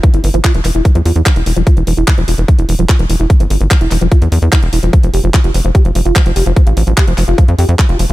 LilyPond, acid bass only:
\new Staff \with { instrumentName = "Acid bass" } { \clef bass \time 4/4 \key f \lydian \tempo 4 = 147 e16 e'16 e16 f16 f'16 e16 e16 e'16 e16 f16 f'16 e16 e16 e'16 e16 f16 | f'16 e16 e16 e'16 e16 f16 f'16 e16 e16 e'16 e16 f16 f'16 e16 e16 e'16 | e16 f16 f'16 e16 e16 e'16 e16 f16 f'16 e16 e16 e16 e'16 r16 e'16 f16 | f16 f16 g'16 f16 f16 f'16 f16 f16 g'16 f16 f16 f'16 f16 f16 g'16 f16 |
f16 f'16 f16 f16 g'16 f16 f16 f'16 f16 f16 g'16 f16 f16 f'16 f16 f16 | }